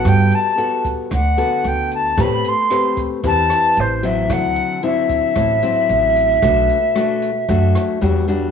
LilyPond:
<<
  \new Staff \with { instrumentName = "Flute" } { \time 4/4 \key b \phrygian \tempo 4 = 113 g''8 a''4 r8 fis''4 g''8 a''8 | b''8 c'''4 r8 a''4 c''8 e''8 | fis''4 e''2.~ | e''2. r4 | }
  \new Staff \with { instrumentName = "Nylon-string guitar" } { \time 4/4 \key b \phrygian << { <b fis' a'>4 <b fis' a'>4 r8 <b fis' a'>4. | <c' g' b'>8 r8 <c' g' b'>4 <c' g' b'>4. <fis c' e'>8~ | <fis c' e'>4 <fis c' e'>4. <fis c' e'>4. | <a d' fis'>8 r8 <a d' fis'>8 r8 <a d' fis'>4 <g d' fis'>8 <g d' fis'>8 | } \\ { g2 d2 | a2 e2 | d2 a,2 | b,2 fis4 r4 | } >> }
  \new Staff \with { instrumentName = "Upright bass" } { \clef bass \time 4/4 \key b \phrygian g,8 r4. d,8 r8 d,4 | a,8 r4. e,8 r8 a,,4 | d,8 r4. a,,8 r8 a,,4 | b,,8 r4. fis,8 r8 e,4 | }
  \new DrumStaff \with { instrumentName = "Drums" } \drummode { \time 4/4 <hh bd ss>8 hh8 hh8 <hh bd>8 <hh bd ss>8 hh8 hh8 hh8 | <hh bd ss>8 hh8 <hh ss>8 <hh bd>8 <hh bd>8 <hh ss>8 hh8 hh8 | <hh bd ss>8 hh8 hh8 <hh bd>8 <hh bd ss>8 hh8 hh8 hh8 | <hh bd ss>8 hh8 <hh ss>8 hh8 <hh bd>8 <hh ss>8 hh8 hh8 | }
>>